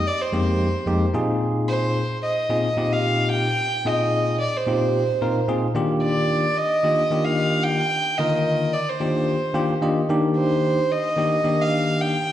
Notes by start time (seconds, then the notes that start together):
0.07 D5
0.21 C5
0.32 F2 G#3 A#3 C4 D#4 G4
0.86 F2 G#3 A#3 C4 D#4 G4
1.14 A#2 C4 D#4 F4 G#4
1.68 C5
2.23 D#5
2.49 A#2 C4 D#4 F4 G#4
2.77 A#2 C4 D#4 F4 G4
2.93 F5
3.32 G5
3.85 A#2 C4 D#4 F4 G#4 D#5
4.41 D5
4.56 C5
4.67 A#2 C4 D#4 F4 G4
5.21 A#2 C4 D#4 F4 A#4
5.48 A#2 C4 D#4 F4 G#4
5.75 D#3 A#3 D4 F4 G4
6.03 D5
6.57 D#5
6.83 D#3 A#3 D4 F4 G4
7.11 D#3 A#3 D4 F4 G4
7.25 F5
7.64 G5
8.18 D3 D#3 A#3 F4 A#4 D#5
8.73 D5
8.89 C5
9.00 D#3 A#3 D4 F4 G4
9.54 D#3 A#3 D4 F4 G4 G5
9.82 D#3 A#3 D4 F4 G4 D#5
10.09 D#3 A#3 D4 D#4 G4
10.38 C5
10.92 D#5
11.17 D#3 A#3 D4 D#4 G4
11.44 D#3 A#3 D4 D#4 G4
11.61 F5
12.01 G5